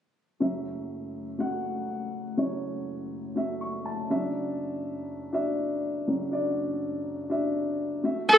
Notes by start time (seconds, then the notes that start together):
0.40 F#1 F#2 A3 F#4 E5
1.39 A3 F#4 F#5
2.37 F#1 F#2 A3 F#4 C#5
3.36 A3 F#4 E5
3.61 C#6
3.86 A5
4.10 F#1 F#2 D4 F#4 E5
5.33 D4 F#4 E5
6.08 F#1 F#2
6.31 D4 F#4 D5
7.30 D4 F#4 E5
8.04 A3 F#4 E5
8.29 F#1 F#2 G#3 F#4 A4
8.34 A3